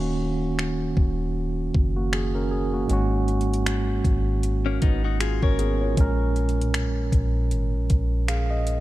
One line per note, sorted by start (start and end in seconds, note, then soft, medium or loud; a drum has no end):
0.00 0.93 D#1 loud
0.00 2.84 D#3 medium
0.00 1.70 A#3 medium
0.00 1.71 C#4 medium
0.00 1.72 F#4 medium
0.59 finger snap loud
0.97 1.71 D#1 loud
0.97 kick medium
1.75 2.86 F#1 loud
1.75 kick medium
1.97 2.12 A#3 medium
1.97 2.12 F#4 medium
2.13 2.34 G#4 medium
2.13 finger snap loud
2.35 2.51 C#4 medium
2.35 2.50 A#4 medium
2.51 2.72 G#4 medium
2.74 3.10 A#3 medium
2.74 2.92 F#4 medium
2.86 4.01 G#1 loud
2.86 5.92 G#2 medium
2.86 5.93 G#3 medium
2.86 closed hi-hat medium
2.91 5.17 C#4 medium
2.91 5.18 F#4 medium
3.28 closed hi-hat soft
3.41 closed hi-hat medium
3.54 closed hi-hat medium
3.66 finger snap loud
3.66 closed hi-hat medium
4.04 4.79 G#1 loud
4.04 kick medium
4.04 closed hi-hat medium
4.43 closed hi-hat medium
4.66 4.81 A#3 medium
4.66 4.81 C#4 medium
4.82 5.41 G#1 medium
4.82 5.03 B3 medium
4.82 5.03 D#4 medium
4.82 kick medium
4.82 closed hi-hat medium
5.04 5.20 D#4 medium
5.04 5.20 F#4 medium
5.20 5.42 F4 medium
5.20 5.42 G#4 medium
5.20 finger snap loud
5.20 closed hi-hat medium
5.43 5.95 G#1 loud
5.43 5.58 C#4 medium
5.43 5.58 A#4 medium
5.43 5.95 A#4 medium
5.43 5.95 C#5 medium
5.43 kick medium
5.59 5.80 B3 medium
5.59 5.80 G#4 medium
5.59 closed hi-hat medium
5.81 6.18 F4 medium
5.81 6.18 C#5 medium
5.94 6.60 A#1 loud
5.94 8.61 A#2 medium
5.94 8.62 G#3 medium
5.94 kick loud
5.94 closed hi-hat medium
5.98 8.63 C#4 medium
5.98 8.26 A#4 medium
6.36 closed hi-hat soft
6.49 closed hi-hat soft
6.59 6.87 B1 medium
6.59 closed hi-hat medium
6.74 finger snap loud
6.74 closed hi-hat medium
6.86 7.12 A#1 loud
7.12 7.53 A#1 loud
7.12 kick medium
7.12 closed hi-hat medium
7.51 7.75 G#1 loud
7.51 closed hi-hat medium
7.74 7.89 A#1 medium
7.90 8.80 A#1 medium
7.90 kick medium
7.90 closed hi-hat medium
8.28 8.50 G#4 medium
8.28 8.49 F5 medium
8.28 finger snap loud
8.28 closed hi-hat medium
8.51 8.80 D#5 medium
8.67 closed hi-hat medium